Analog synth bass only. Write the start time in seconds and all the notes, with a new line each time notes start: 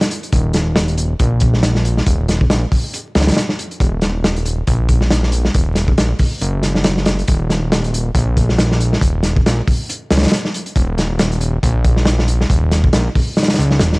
0.33 D#1
1.20 A#1
2.07 D#1
2.50 A#1
3.15 C#2
3.80 D#1
4.68 A#1
5.55 D#1
5.98 A#1
6.41 F#1
7.28 D#1
8.15 A#1
9.01 D#1
9.46 A#1
10.11 C#2
10.76 D#1
11.63 A#1
12.50 D#1
12.93 A#1
13.59 C#2
13.81 D#1